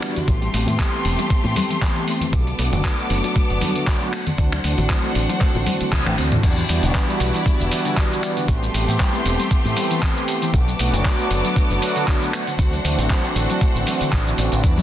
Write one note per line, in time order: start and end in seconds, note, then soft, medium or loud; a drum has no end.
0.00 0.25 E3 medium
0.00 0.25 G3 medium
0.00 0.16 G3 medium
0.00 0.25 B3 medium
0.00 0.25 D4 medium
0.00 0.26 E4 medium
0.00 0.26 F#4 loud
0.00 0.26 D5 medium
0.00 finger snap medium
0.00 open hi-hat medium
0.00 high bongo medium
0.16 0.28 D3 medium
0.16 closed hi-hat soft
0.16 low conga medium
0.27 0.47 A1 loud
0.27 0.40 E3 medium
0.27 0.37 E3 medium
0.27 0.40 A3 medium
0.27 2.31 A3 medium
0.27 0.40 B3 medium
0.27 0.40 C4 medium
0.27 2.31 G4 medium
0.27 0.40 G4 loud
0.27 2.31 C6 medium
0.27 kick loud
0.27 closed hi-hat soft
0.42 0.50 G3 medium
0.42 closed hi-hat soft
0.52 0.64 A1 medium
0.52 2.30 E3 medium
0.52 2.30 A3 medium
0.52 0.63 A3 medium
0.52 2.30 B3 medium
0.52 2.30 C4 medium
0.52 2.31 G4 medium
0.52 open hi-hat loud
0.67 0.76 A2 loud
0.67 0.75 E3 loud
0.67 closed hi-hat medium
0.67 high bongo medium
0.67 low conga medium
0.79 0.88 G3 loud
0.79 kick loud
0.79 clap loud
0.79 closed hi-hat medium
0.93 1.01 A3 medium
0.93 closed hi-hat soft
1.05 1.15 E1 medium
1.05 1.14 E3 medium
1.05 open hi-hat medium
1.19 1.26 G3 medium
1.19 closed hi-hat medium
1.19 high bongo medium
1.30 1.36 A3 medium
1.30 kick loud
1.30 closed hi-hat medium
1.44 1.53 A2 medium
1.44 1.52 E3 medium
1.44 closed hi-hat soft
1.44 high bongo medium
1.56 1.65 G3 loud
1.56 open hi-hat loud
1.56 high conga medium
1.56 low conga medium
1.70 1.78 E3 loud
1.70 closed hi-hat medium
1.82 1.91 E3 loud
1.82 kick loud
1.82 clap loud
1.82 closed hi-hat soft
1.96 2.01 E3 medium
1.96 closed hi-hat soft
2.08 2.21 A3 medium
2.08 open hi-hat medium
2.21 2.33 E3 medium
2.21 closed hi-hat medium
2.21 low conga medium
2.33 2.52 B1 loud
2.33 2.42 D3 medium
2.33 2.45 F#3 medium
2.33 2.45 A3 medium
2.33 2.45 B3 medium
2.33 4.11 B3 medium
2.33 2.45 D4 medium
2.33 2.45 F#4 medium
2.33 4.11 A4 medium
2.33 4.11 D6 medium
2.33 kick loud
2.33 closed hi-hat medium
2.47 2.55 F#3 medium
2.47 closed hi-hat soft
2.58 2.69 B1 medium
2.58 3.46 F#3 medium
2.58 3.46 A3 medium
2.58 2.68 A3 medium
2.58 3.46 B3 medium
2.58 3.47 D4 medium
2.58 3.47 F#4 loud
2.58 open hi-hat medium
2.72 2.81 F#1 loud
2.72 2.80 D3 loud
2.72 closed hi-hat medium
2.72 high bongo medium
2.72 low conga loud
2.84 2.93 F#3 loud
2.84 kick loud
2.84 clap loud
2.84 closed hi-hat medium
2.98 3.06 A3 medium
2.98 closed hi-hat soft
3.10 3.20 F#1 medium
3.10 3.19 D3 medium
3.10 open hi-hat medium
3.24 3.32 F#3 medium
3.24 closed hi-hat medium
3.24 high bongo medium
3.36 3.41 A3 medium
3.36 muted fingered electric bass stroke soft
3.36 kick loud
3.36 closed hi-hat medium
3.50 3.58 F#1 medium
3.50 3.57 D3 loud
3.50 3.60 F#3 medium
3.50 3.60 A3 medium
3.50 3.60 B3 medium
3.50 3.60 D4 medium
3.50 3.60 F#4 loud
3.50 closed hi-hat soft
3.61 4.11 F#3 medium
3.61 3.70 F#3 loud
3.61 4.11 A3 medium
3.61 4.11 B3 medium
3.61 4.11 D4 medium
3.61 4.12 F#4 loud
3.61 open hi-hat loud
3.61 high conga medium
3.61 low conga medium
3.75 3.83 D3 loud
3.75 closed hi-hat medium
3.87 3.96 D3 loud
3.87 kick loud
3.87 clap loud
3.87 closed hi-hat medium
4.01 4.06 D3 medium
4.01 closed hi-hat soft
4.13 4.26 A3 medium
4.13 6.41 D4 medium
4.13 6.41 C5 medium
4.13 6.41 F#5 medium
4.13 finger snap medium
4.13 open hi-hat medium
4.13 high bongo medium
4.27 4.37 D3 medium
4.27 closed hi-hat medium
4.27 low conga medium
4.38 4.57 D2 loud
4.38 4.48 D3 medium
4.38 4.50 E3 medium
4.38 4.50 A3 medium
4.38 4.50 C4 medium
4.38 4.50 D4 medium
4.38 4.51 F#4 loud
4.38 kick loud
4.38 closed hi-hat medium
4.52 4.60 F#3 medium
4.52 finger snap medium
4.52 closed hi-hat soft
4.52 high conga medium
4.63 4.74 D2 medium
4.63 6.40 E3 medium
4.63 6.40 A3 medium
4.63 4.73 A3 medium
4.63 6.41 C4 medium
4.63 6.41 D4 medium
4.63 6.41 F#4 medium
4.63 open hi-hat loud
4.78 4.86 A1 loud
4.78 4.86 D3 loud
4.78 closed hi-hat medium
4.78 high bongo medium
4.78 low conga medium
4.90 4.99 F#3 loud
4.90 kick loud
4.90 clap loud
4.90 closed hi-hat medium
5.04 5.11 A3 medium
5.04 closed hi-hat soft
5.15 5.25 A1 medium
5.15 5.24 D3 medium
5.15 open hi-hat medium
5.29 5.37 F#3 medium
5.29 closed hi-hat medium
5.29 high bongo medium
5.41 5.46 A3 medium
5.41 kick loud
5.41 clap soft
5.41 closed hi-hat medium
5.55 5.63 A1 medium
5.55 5.62 D3 loud
5.55 closed hi-hat soft
5.55 high bongo medium
5.66 5.79 D3 medium
5.66 open hi-hat loud
5.66 high conga medium
5.66 low conga medium
5.80 5.88 D3 medium
5.80 muted fingered electric bass stroke soft
5.80 closed hi-hat medium
5.92 6.02 C2 medium
5.92 kick loud
5.92 clap loud
5.92 closed hi-hat medium
5.92 high tom medium
6.06 6.15 A1 medium
6.06 6.13 A3 medium
6.06 finger snap medium
6.06 closed hi-hat soft
6.06 high tom medium
6.18 6.37 D2 medium
6.18 6.30 C4 medium
6.18 open hi-hat medium
6.31 6.39 C4 medium
6.31 closed hi-hat medium
6.31 mid tom medium
6.31 low conga medium
6.43 6.62 E2 loud
6.43 6.52 D3 medium
6.43 6.55 E3 medium
6.43 6.55 G3 medium
6.43 6.55 B3 medium
6.43 6.55 D4 medium
6.43 8.47 E4 medium
6.43 6.55 F#4 medium
6.43 8.47 D5 medium
6.43 kick loud
6.43 closed hi-hat medium
6.43 crash loud
6.43 shaker soft
6.57 6.65 E3 medium
6.57 closed hi-hat soft
6.57 shaker soft
6.68 6.79 E2 medium
6.68 7.56 E3 medium
6.68 7.56 G3 medium
6.68 6.78 G3 medium
6.68 7.56 B3 medium
6.68 7.57 D4 medium
6.68 7.57 F#4 loud
6.68 open hi-hat loud
6.68 shaker medium
6.83 6.91 E1 loud
6.83 6.91 D3 loud
6.83 closed hi-hat medium
6.83 shaker soft
6.95 7.04 E3 loud
6.95 kick loud
6.95 clap loud
6.95 closed hi-hat medium
6.95 shaker soft
7.08 7.16 G3 medium
7.08 closed hi-hat soft
7.08 shaker soft
7.20 7.30 B1 medium
7.20 7.29 D3 medium
7.20 open hi-hat medium
7.20 shaker medium
7.34 7.42 E3 medium
7.34 closed hi-hat medium
7.34 shaker soft
7.46 7.51 G3 medium
7.46 muted fingered electric bass stroke soft
7.46 kick loud
7.46 closed hi-hat medium
7.46 shaker soft
7.59 7.68 E1 medium
7.59 7.67 D3 loud
7.59 7.69 E3 loud
7.59 7.70 G3 medium
7.59 7.70 B3 medium
7.59 7.70 D4 medium
7.59 7.70 F#4 loud
7.59 closed hi-hat soft
7.59 shaker soft
7.71 8.45 E3 medium
7.71 7.80 E3 loud
7.71 8.46 G3 medium
7.71 8.46 B3 medium
7.71 8.46 D4 medium
7.71 8.46 F#4 loud
7.71 open hi-hat loud
7.71 shaker medium
7.85 7.93 D3 loud
7.85 closed hi-hat medium
7.85 shaker soft
7.97 8.06 D3 loud
7.97 kick loud
7.97 clap loud
7.97 closed hi-hat medium
7.97 shaker soft
8.11 8.16 D3 medium
8.11 closed hi-hat soft
8.11 shaker soft
8.23 8.36 G3 medium
8.23 finger snap medium
8.23 open hi-hat medium
8.23 shaker medium
8.37 8.48 D3 medium
8.37 closed hi-hat medium
8.37 shaker soft
8.48 8.67 A1 loud
8.48 8.60 E3 medium
8.48 8.57 E3 medium
8.48 8.60 A3 medium
8.48 10.52 A3 medium
8.48 8.60 B3 medium
8.48 8.60 C4 medium
8.48 8.60 G4 loud
8.48 10.52 G4 medium
8.48 10.52 C6 medium
8.48 kick loud
8.48 closed hi-hat medium
8.48 shaker soft
8.62 8.70 G3 medium
8.62 closed hi-hat soft
8.62 shaker soft
8.73 8.84 A1 medium
8.73 10.50 E3 medium
8.73 10.51 A3 medium
8.73 8.83 A3 medium
8.73 10.51 B3 medium
8.73 10.51 C4 medium
8.73 10.51 G4 medium
8.73 open hi-hat loud
8.73 shaker medium
8.88 8.96 A2 loud
8.88 8.96 E3 loud
8.88 closed hi-hat medium
8.88 shaker soft
8.99 9.09 G3 loud
8.99 kick loud
8.99 clap loud
8.99 closed hi-hat medium
8.99 shaker soft
9.13 9.21 A3 medium
9.13 closed hi-hat soft
9.13 shaker soft
9.25 9.35 E1 medium
9.25 9.34 E3 medium
9.25 open hi-hat loud
9.25 shaker medium
9.39 9.47 G3 medium
9.39 closed hi-hat medium
9.39 shaker soft
9.51 kick loud
9.51 closed hi-hat medium
9.51 shaker soft
9.65 9.73 A2 medium
9.65 9.72 E3 loud
9.65 closed hi-hat soft
9.65 shaker soft
9.77 9.86 G3 loud
9.77 open hi-hat loud
9.77 shaker medium
9.91 9.98 E3 loud
9.91 closed hi-hat medium
9.91 shaker soft
10.02 kick loud
10.02 clap loud
10.02 closed hi-hat medium
10.02 shaker soft
10.16 10.21 E3 medium
10.16 closed hi-hat soft
10.16 shaker soft
10.28 10.41 A3 medium
10.28 open hi-hat loud
10.28 shaker medium
10.42 10.53 E3 medium
10.42 closed hi-hat medium
10.42 shaker soft
10.53 10.73 B1 loud
10.53 10.65 F#3 medium
10.53 10.65 A3 medium
10.53 10.65 B3 medium
10.53 12.32 B3 medium
10.53 10.66 D4 medium
10.53 10.66 F#4 medium
10.53 12.31 A4 medium
10.53 12.31 D6 medium
10.53 kick loud
10.53 closed hi-hat medium
10.53 shaker soft
10.68 10.75 F#3 medium
10.68 closed hi-hat soft
10.68 shaker soft
10.78 10.89 B1 medium
10.78 11.66 F#3 medium
10.78 11.67 A3 medium
10.78 10.88 A3 medium
10.78 11.67 B3 medium
10.78 11.67 D4 medium
10.78 11.67 F#4 loud
10.78 open hi-hat loud
10.78 shaker medium
10.93 11.02 F#1 loud
10.93 11.01 D3 loud
10.93 closed hi-hat medium
10.93 shaker soft
11.05 11.14 F#3 loud
11.05 kick loud
11.05 clap loud
11.05 closed hi-hat soft
11.05 shaker soft
11.19 11.26 A3 medium
11.19 closed hi-hat soft
11.19 shaker soft
11.31 11.41 F#1 medium
11.31 11.40 D3 medium
11.31 open hi-hat loud
11.31 shaker medium
11.44 11.52 F#3 medium
11.44 closed hi-hat medium
11.44 shaker soft
11.56 11.62 A3 medium
11.56 muted fingered electric bass stroke soft
11.56 kick loud
11.56 closed hi-hat medium
11.56 shaker soft
11.70 11.79 F#1 medium
11.70 11.78 D3 loud
11.70 11.80 F#3 medium
11.70 11.80 A3 medium
11.70 11.80 B3 medium
11.70 11.80 D4 medium
11.70 11.81 F#4 loud
11.70 closed hi-hat soft
11.70 shaker soft
11.82 12.32 F#3 medium
11.82 11.91 F#3 loud
11.82 12.32 A3 medium
11.82 12.32 B3 medium
11.82 12.32 D4 medium
11.82 12.32 F#4 loud
11.82 open hi-hat loud
11.82 shaker medium
11.96 12.03 D3 loud
11.96 closed hi-hat medium
11.96 shaker soft
12.07 12.16 D3 loud
12.07 kick loud
12.07 clap loud
12.07 closed hi-hat medium
12.07 shaker soft
12.22 12.26 D3 medium
12.22 closed hi-hat soft
12.22 shaker soft
12.33 12.46 A3 medium
12.33 14.62 D4 medium
12.33 14.62 C5 medium
12.33 14.62 F#5 medium
12.33 finger snap medium
12.33 open hi-hat loud
12.33 shaker medium
12.47 12.58 D3 medium
12.47 closed hi-hat medium
12.47 shaker soft
12.59 12.78 D2 loud
12.59 12.68 D3 medium
12.59 12.71 E3 medium
12.59 12.71 A3 medium
12.59 12.71 C4 medium
12.59 12.71 D4 medium
12.59 12.71 F#4 loud
12.59 kick loud
12.59 closed hi-hat soft
12.59 shaker soft
12.73 12.81 F#3 medium
12.73 closed hi-hat soft
12.73 shaker soft
12.84 12.94 D2 medium
12.84 14.61 E3 medium
12.84 14.61 A3 medium
12.84 12.94 A3 medium
12.84 14.61 C4 medium
12.84 14.62 D4 medium
12.84 14.62 F#4 medium
12.84 open hi-hat loud
12.84 shaker medium
12.98 13.07 A1 loud
12.98 13.06 D3 loud
12.98 closed hi-hat medium
12.98 shaker soft
13.10 13.19 F#3 loud
13.10 kick loud
13.10 clap loud
13.10 closed hi-hat medium
13.10 shaker soft
13.24 13.32 A3 medium
13.24 closed hi-hat soft
13.24 shaker soft
13.35 13.46 A1 medium
13.35 13.45 D3 medium
13.35 open hi-hat medium
13.35 shaker medium
13.50 13.57 F#3 medium
13.50 closed hi-hat soft
13.50 shaker soft
13.61 13.67 A3 medium
13.61 kick loud
13.61 closed hi-hat soft
13.61 shaker soft
13.75 13.84 A1 medium
13.75 13.83 D3 loud
13.75 closed hi-hat soft
13.75 shaker soft
13.87 13.96 F#3 loud
13.87 open hi-hat loud
13.87 shaker medium
14.01 14.09 D3 loud
14.01 muted fingered electric bass stroke soft
14.01 closed hi-hat soft
14.01 shaker soft
14.12 14.32 A1 medium
14.12 kick loud
14.12 clap loud
14.12 closed hi-hat medium
14.12 shaker soft
14.26 14.31 D3 medium
14.26 closed hi-hat soft
14.26 shaker soft
14.38 14.48 A1 loud
14.38 14.52 A3 medium
14.38 open hi-hat loud
14.38 shaker medium
14.52 14.61 A1 loud
14.52 14.63 D3 medium
14.52 closed hi-hat soft
14.52 shaker soft
14.64 14.82 E2 loud
14.64 14.73 D3 medium
14.64 14.76 E3 medium
14.64 14.76 G3 medium
14.64 14.76 B3 medium
14.64 14.76 D4 medium
14.64 14.82 E4 medium
14.64 14.76 F#4 medium
14.64 14.82 D5 medium
14.64 kick loud
14.64 closed hi-hat medium
14.64 shaker soft
14.64 shaker medium
14.78 14.82 E3 medium
14.78 closed hi-hat soft
14.78 high conga medium
14.78 shaker soft